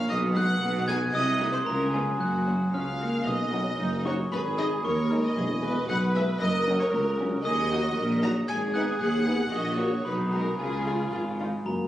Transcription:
0.09 B1 B2 D#5 D#6
0.35 G#3 D#4 G#4 F#5 F#6
0.61 B1 B2
0.87 G#3 D#4 G#4 G#5 G#6
1.12 C2 C3 D#5 D#6
1.40 A3 D#4 F#4
1.52 C5 C6
1.64 C#2 C#3 A#4 A#5
1.89 B3 G#4
1.93 C#4 F4 G#5
2.18 F#1 F#2 F#4 F#6
2.46 A#3 C#4 F#4
2.72 C#2 C#4 F5 F6
2.99 A#3 F#4
3.26 B1 B2 D#5 D#6
3.52 F#3 D#4 F#4
3.79 F#1 F#2 D#4
4.04 F#3 D#4 F#4 C#5 C#6
4.32 G#1 G#2 G#4 B4 B5
4.57 G#3 D#4 G#4 D#5 D#6
4.83 D#2 A#4 C#5 C#6
5.10 G#3 D#4 G#4
5.24 D#5 D#6
5.36 E1 E2 G#4
5.62 G#3 B3 E4 G#4 B4
5.88 B1 B2 B4 F#5 F#6
6.14 G#3 B3 E4 G#4 E5 E6
6.39 F#1 F#2 A#4 D#5 D#6
6.66 F#3 C#4 F#4
6.80 C#5 C#6
6.91 C#2 A#4 A#5
6.95 C#2
7.19 F#3 C#4 F#4
7.43 D#2 G#4 D#5 D#6
7.71 F#3 D#4 F#4
7.96 A#1 A#2 A#4
8.22 F#3 D#4 F#4 A#5 A#6
8.48 G#1 G#2 G#4 G#5 G#6
8.74 B3 D#4 B4 F#5 F#6
9.00 D#2 F#5 F#6
9.26 B3 D#4 B4
9.51 A#1 A#2 F#4 D#5 D#6
9.77 A#3 F#4 A#4 C#5 C#6
10.04 B1 B2 D#4 B4 B5
10.31 G#3 F#4 G#4 A#4 A#5
10.58 C#2 C#3 F4 G#4 G#5
10.86 G#3 F4 G#4
11.12 G#1 G#2 F4
11.38 G#3 D#4 F4
11.66 F#1 F#2 A#3 F#4 A#5

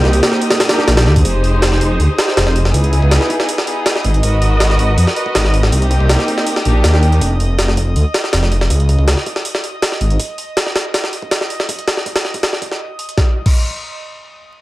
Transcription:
Already playing: A#3 C4 D#4 G4 D#5 D#6
0.04 C2, snare
0.13 open hi-hat
0.23 snare, open hi-hat
0.32 snare
0.42 open hi-hat
0.50 snare, open hi-hat
0.60 snare, open hi-hat
0.69 A#3 D4 D#4 G4, snare, open hi-hat
0.79 snare
0.88 A#1, snare, open hi-hat
0.97 A#3 D4 D#4 G4, snare, open hi-hat
1.06 D2, snare
1.16 kick, open hi-hat
1.24 F1 D#4 G4 G#4 C5 D#5 D#6, kick, open hi-hat
1.44 open hi-hat
1.62 snare, open hi-hat
1.72 snare
1.81 kick, open hi-hat
2.00 D2, open hi-hat
2.18 D#4 G4 G#4 C5, snare, open hi-hat
2.28 snare
2.37 F1, snare, open hi-hat
2.47 snare
2.56 open hi-hat
2.65 snare
2.74 C#2 B3 D#4 E4 G#4, kick, open hi-hat
2.84 closed hi-hat
2.93 kick, open hi-hat
3.02 C#2, kick
3.11 snare, open hi-hat
3.21 snare
3.30 kick, open hi-hat
3.40 snare
3.49 open hi-hat
3.58 snare
3.67 B3 D#4 E4 G#4, open hi-hat
3.86 snare, open hi-hat
3.96 snare
4.04 G#1, open hi-hat
4.14 closed hi-hat
4.23 G#1 F#4 A#4 B4 D#5, kick, open hi-hat
4.42 open hi-hat
4.60 snare, open hi-hat
4.70 snare
4.79 kick, open hi-hat
4.98 F2, kick, open hi-hat
5.07 snare
5.16 F#4 A#4 B4 D#5, open hi-hat
5.26 kick
5.35 G#1, snare, open hi-hat
5.45 snare
5.54 open hi-hat
5.63 snare
5.72 C2 A#3 C4 D#4 G4, kick, open hi-hat
5.82 closed hi-hat
5.91 kick, open hi-hat
6.00 C2, kick
6.09 snare, open hi-hat
6.19 snare
6.28 kick, open hi-hat
6.38 snare
6.47 open hi-hat
6.56 snare
6.65 A#1 A#3 D4 D#4 G4, open hi-hat
6.84 D#2, snare, open hi-hat
6.93 A#3 D4 D#4 G4, snare
7.03 open hi-hat
7.12 closed hi-hat
7.21 F1, kick, open hi-hat
7.40 open hi-hat
7.59 snare, open hi-hat
7.68 snare
7.77 kick, open hi-hat
7.96 D2, open hi-hat
8.14 snare, open hi-hat
8.24 snare
8.33 F1, snare, open hi-hat
8.43 snare
8.52 open hi-hat
8.61 snare
8.70 C#2, kick, open hi-hat
8.80 closed hi-hat
8.89 kick, open hi-hat
8.99 C#2, kick
9.08 snare, open hi-hat
9.17 snare
9.26 kick, open hi-hat
9.36 snare
9.45 open hi-hat
9.55 snare
9.64 open hi-hat
9.82 snare, open hi-hat
9.92 snare
10.01 G#1, open hi-hat
10.10 closed hi-hat
10.20 kick, open hi-hat
10.38 open hi-hat
10.57 snare, open hi-hat
10.67 snare
10.76 snare, open hi-hat
10.94 snare, open hi-hat
11.04 snare
11.13 open hi-hat
11.22 kick
11.31 snare, open hi-hat
11.41 snare
11.50 open hi-hat
11.60 snare
11.69 kick, open hi-hat
11.79 closed hi-hat
11.88 snare, open hi-hat
11.97 snare
12.06 kick, open hi-hat
12.16 snare, open hi-hat
12.25 snare
12.34 kick, open hi-hat
12.43 snare, open hi-hat
12.53 snare
12.62 kick, open hi-hat
12.72 snare
12.99 open hi-hat
13.09 closed hi-hat
13.18 kick, snare
13.46 kick, crash

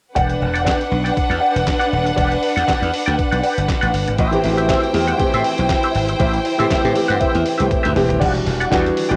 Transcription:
0.15 E1 D4 G4 B4 D5 F#5, kick, closed hi-hat
0.30 muted clean electric guitar stroke, closed hi-hat
0.40 E1, muted clean electric guitar stroke
0.54 G4 D5 F#5, closed hi-hat
0.64 G4 D5 F#5, kick, snare, clap, closed hi-hat
0.79 muted clean electric guitar stroke, closed hi-hat
0.91 B1, muted clean electric guitar stroke
1.04 G4 D5 G5, closed hi-hat
1.17 muted clean electric guitar stroke, kick, closed hi-hat
1.30 E2 G4 D5 F#5, closed hi-hat
1.40 G4 D5 F#5
1.54 E1, muted clean electric guitar stroke, closed hi-hat
1.65 muted clean electric guitar stroke, kick, snare, clap, closed hi-hat
1.79 G4 D5 F#5, closed hi-hat
1.92 D#1, muted clean electric guitar stroke
2.06 muted clean electric guitar stroke, closed hi-hat
2.16 E1 G4 D5 F#5, kick, closed hi-hat
2.31 muted clean electric guitar stroke, closed hi-hat
2.42 muted clean electric guitar stroke, open hi-hat
2.56 E2 G4 D5 F#5, closed hi-hat
2.68 G4 D5 F#5, muted slap bass stroke, kick, snare, clap, closed hi-hat
2.82 E2, muted clean electric guitar stroke, closed hi-hat
2.92 muted clean electric guitar stroke, open hi-hat
3.06 D2 G4 D5 G5, closed hi-hat
3.17 muted clean electric guitar stroke, kick, closed hi-hat
3.31 B1 G4 D5 F#5, closed hi-hat
3.42 G4 D5 F#5, open hi-hat
3.56 G1, muted clean electric guitar stroke, closed hi-hat
3.68 muted clean electric guitar stroke, kick, snare, clap, closed hi-hat
3.81 A1 G4 D5 F#5, closed hi-hat
3.93 G1, muted clean electric guitar stroke, open hi-hat
4.08 G#1, muted clean electric guitar stroke, closed hi-hat
4.18 A1 E4 G4 C5 E5 G5, kick, closed hi-hat
4.31 E3 A3 C4 G4, muted clean electric guitar stroke, closed hi-hat
4.43 A1 E3 A3 C4 F#4, muted clean electric guitar stroke, open hi-hat
4.50 G4
4.57 G4 C5 E5, closed hi-hat
4.69 G4 C5 E5, kick, snare, clap, closed hi-hat
4.83 muted clean electric guitar stroke, closed hi-hat
4.93 E2 E3 A3 C4 G4, muted clean electric guitar stroke, open hi-hat
5.08 G4 C5 F#5, closed hi-hat
5.18 E3 A3 C4 G4, muted slap bass stroke, muted clean electric guitar stroke, kick, closed hi-hat
5.34 A2 G4 C5 E5, closed hi-hat
5.44 muted clean electric guitar stroke, open hi-hat
5.58 B1, muted clean electric guitar stroke, closed hi-hat
5.69 muted clean electric guitar stroke, kick, snare, clap, closed hi-hat
5.83 G4 C5 E5, closed hi-hat
5.95 G#1, muted clean electric guitar stroke, open hi-hat
6.09 muted clean electric guitar stroke, closed hi-hat
6.19 A1 G4 C5 E5, kick, closed hi-hat
6.33 closed hi-hat
6.45 muted clean electric guitar stroke, open hi-hat
6.58 A2 E3 A3 C4 G4 C5 E5, closed hi-hat
6.70 G4 C5 E5, muted slap bass stroke, kick, snare, clap, closed hi-hat
6.83 A2 E3 A3 C4 G4, muted clean electric guitar stroke, closed hi-hat
6.94 E3 A3 C4 G4, muted clean electric guitar stroke, open hi-hat
7.08 G2 G4 C5 F#5, closed hi-hat
7.19 G4 C5 E5, kick, closed hi-hat
7.34 E2, muted clean electric guitar stroke, closed hi-hat
7.44 muted clean electric guitar stroke, open hi-hat
7.58 C2 E3 A3 C4 G4 C5 E5, closed hi-hat
7.69 muted clean electric guitar stroke, kick, closed hi-hat, high tom
7.83 D2 G4 C5 E5, closed hi-hat, mid tom
7.95 E1 E3 A3 C4 G4, muted clean electric guitar stroke, mid tom, open hi-hat
8.09 D#1, muted clean electric guitar stroke, closed hi-hat, floor tom
8.20 E1 E3 G3 D4 F4 G4 D5 F#5, kick, closed hi-hat, crash
8.28 F#4
8.35 muted clean electric guitar stroke, closed hi-hat
8.46 E1, muted clean electric guitar stroke, open hi-hat
8.60 G4 D5 F#5, closed hi-hat
8.71 E2 E3 G3 D4 F#4 G4 D5 F#5, kick, snare, clap, closed hi-hat
8.84 muted clean electric guitar stroke, closed hi-hat
8.96 muted clean electric guitar stroke, open hi-hat
9.09 A1 E3 G3 D4 F#4 G4 D5 G5, closed hi-hat

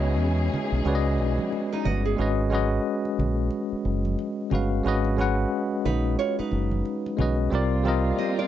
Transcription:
Already playing: C#2 G#3 B3 C#4 D#4 E4 F#4 G#4 B4 C#5 D#5
0.19 E2
0.39 muted conga
0.54 low conga
0.72 B1
0.84 C#2 G#3 C#4 F#4 B4, muted conga
0.88 D5
0.95 D#5
1.18 B1, high conga
1.39 high conga
1.52 muted conga
1.72 D#4 B4, muted conga
1.85 G1 F#4 D#5, high conga, low conga
2.05 B3 G#4
2.17 G#1 G#3 C#4 F#4 B4
2.22 D#5
2.50 G#3 C#4 F#4 B4, high conga
2.55 D#5
3.05 muted conga
3.19 A#1, low conga
3.51 muted conga
3.72 muted fingered electric bass stroke
3.85 F#1, high conga
4.05 high conga
4.19 muted conga
4.50 G1 G#3 C#4 F#4 B4, high conga, low conga
4.55 F5
4.84 G#1 G#3 C#4 F#4 B4
4.88 D#5
5.05 muted conga
5.17 G#3 C#4 F#4 B4, high conga
5.21 F#5
5.85 A#1 D#4 B4, low conga
6.19 F4 C#5
6.39 D#4 B4, muted fingered electric bass stroke, muted conga
6.51 F#1, high conga
6.71 high conga
6.85 muted conga
7.06 muted conga
7.17 B1 G#3 C#4 F#4 B4, high conga, low conga
7.22 D#5
7.50 C2 G3 A#3 C4 F4 A#4
7.55 D5
7.84 G3 C4 F4 A#4, high conga
7.88 D#5
8.18 G4 D#5, muted conga
8.39 F4 D5

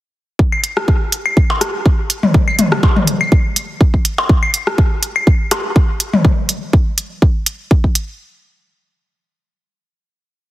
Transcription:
0.39 kick
0.52 claves
0.64 closed hi-hat
0.77 cross-stick
0.88 kick
1.12 closed hi-hat
1.26 claves
1.37 kick
1.50 percussion blips
1.61 cross-stick, closed hi-hat
1.86 kick
2.10 closed hi-hat
2.23 mid tom
2.34 kick
2.48 claves
2.59 closed hi-hat, mid tom
2.72 cross-stick
2.83 kick, percussion blips
2.96 mid tom
3.07 closed hi-hat
3.21 claves
3.32 kick
3.56 closed hi-hat
3.81 kick
3.94 kick
4.05 closed hi-hat
4.18 percussion blips
4.29 kick
4.43 claves
4.54 closed hi-hat
4.67 cross-stick
4.78 kick
5.03 closed hi-hat
5.16 claves
5.27 kick
5.51 cross-stick, closed hi-hat, percussion blips
5.76 kick
6.00 closed hi-hat
6.13 mid tom
6.25 kick
6.49 closed hi-hat
6.73 kick
6.98 closed hi-hat
7.22 kick
7.46 closed hi-hat
7.71 kick
7.84 kick
7.95 closed hi-hat

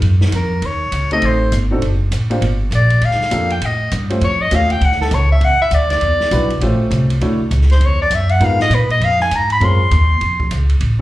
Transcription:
0.02 F#2, ride
0.21 snare
0.32 F2 A#4, hi-hat pedal, ride
0.62 D#2 C#5, ride
0.92 C#2, hi-hat pedal, ride
1.11 A3 C4 D#4 G4 A4 D#5, ride
1.22 A1, ride
1.26 C5
1.52 G1, hi-hat pedal, ride
1.71 C4 D4 D#4 F#4 A4
1.81 F#1, ride
2.11 A1, hi-hat pedal, ride
2.30 A#3 D4 F4 G4 C5, ride
2.41 G1, ride
2.71 A#1, hi-hat pedal, ride
2.75 D5
2.90 ride
3.01 D2 F5, ride
3.11 snare
3.20 muted upright bass stroke, snare
3.31 F2 A#3 D4 F4 G4 A4, hi-hat pedal, ride
3.50 G5, ride
3.62 A2 D#5, ride
3.91 G2, hi-hat pedal, ride
4.09 A3 C#4 F4 G4 C5, ride
4.21 F2 C#5, ride
4.42 D#5
4.51 D#2 A3 C#4 F4 G4 C#5 F5, hi-hat pedal, ride
4.70 G5, ride
4.81 D2 F#5, ride
4.92 snare
5.01 A4, snare
5.11 C#2 C#5, hi-hat pedal, ride
5.32 E5
5.41 E2 F#5, ride
5.62 E5
5.71 D2 D5, hi-hat pedal, ride
5.90 D5, snare, ride
6.01 E2, ride
6.20 snare
6.31 B1 G3 D4 E4 F#4 B4, hi-hat pedal, ride
6.50 ride
6.61 A1 A3 C#4 F4 G4 C5, ride
6.80 muted upright bass stroke
6.91 C2, hi-hat pedal, ride
7.10 ride
7.21 D2 A3 D4 E4 F#4 C#5, ride
7.40 muted upright bass stroke
7.51 C#2, hi-hat pedal, ride
7.61 snare
7.70 C5, snare, ride
7.80 E2, ride
7.85 C#5
8.02 D5
8.10 F#2, hi-hat pedal, ride
8.15 E5
8.29 F#5, ride
8.40 G#2 G#3 B3 D#4 F4 A#4, ride
8.45 F5
8.60 D#5, snare
8.70 A#2, hi-hat pedal, ride
8.75 B4
8.90 D#5, ride
9.00 F2 F5, ride
9.20 G#5, snare
9.31 G#2, hi-hat pedal, ride
9.35 A#5
9.50 B5, ride
9.60 F#2 G#3 C4 C#4 F4 A#4, ride
9.64 C6
9.91 D#2, hi-hat pedal, ride
10.21 F2, ride
10.40 kick
10.51 C#2, hi-hat pedal, ride
10.70 ride
10.81 A1, ride

